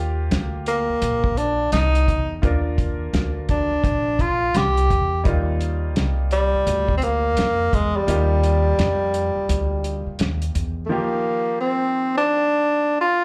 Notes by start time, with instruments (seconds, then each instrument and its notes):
Already playing: upright bass D#2, upright piano A#3 F4 G4
0.31 upright bass D2, snare, closed hi-hat
0.66 tenor saxophone A#3, closed hi-hat
0.89 muted upright bass stroke
1.02 upright bass A#1, closed hi-hat
1.24 kick
1.37 tenor saxophone D4, closed hi-hat
1.72 upright bass C2, tenor saxophone D#4, snare, closed hi-hat
1.95 closed hi-hat
2.08 upright bass E2, kick, closed hi-hat
2.42 upright bass D#2, upright piano A#3 D4 F4 A#4, kick, closed hi-hat
2.78 kick, closed hi-hat
3.13 upright bass D2, snare, closed hi-hat
3.49 tenor saxophone D4, kick, closed hi-hat
3.71 muted upright bass stroke
3.84 upright bass A#1, kick, closed hi-hat
4.19 tenor saxophone F4, kick, closed hi-hat
4.54 upright bass C2, tenor saxophone G4, snare, closed hi-hat
4.77 closed hi-hat
4.90 upright bass E2, kick, closed hi-hat
5.24 upright bass D#2, upright piano G3 A#3 D#4 F4, kick, closed hi-hat
5.61 closed hi-hat
5.96 upright bass C2, snare, closed hi-hat
6.31 tenor saxophone G3, closed hi-hat
6.54 muted upright bass stroke
6.67 upright bass D2, closed hi-hat
6.89 kick
6.97 tenor saxophone C4
7.02 tenor saxophone A#3, closed hi-hat
7.37 upright bass F2, snare, closed hi-hat
7.73 upright bass E2, tenor saxophone G#3, kick, closed hi-hat
7.97 tenor saxophone G3
8.07 upright bass D#2, upright piano A#3 D#4 F4 G4, closed hi-hat
8.43 closed hi-hat
8.79 upright bass F2, snare, closed hi-hat
9.14 closed hi-hat
9.36 muted upright bass stroke
9.49 upright bass D2, closed hi-hat
9.84 closed hi-hat
10.06 muted upright bass stroke
10.19 upright bass D#2, snare, closed hi-hat
10.42 closed hi-hat
10.55 upright bass E2, closed hi-hat
10.86 upright piano F3, tenor saxophone A3
10.90 upright piano D#3 A#3 G4, tenor saxophone A#3
11.60 tenor saxophone C4
12.18 tenor saxophone D4
13.01 tenor saxophone F4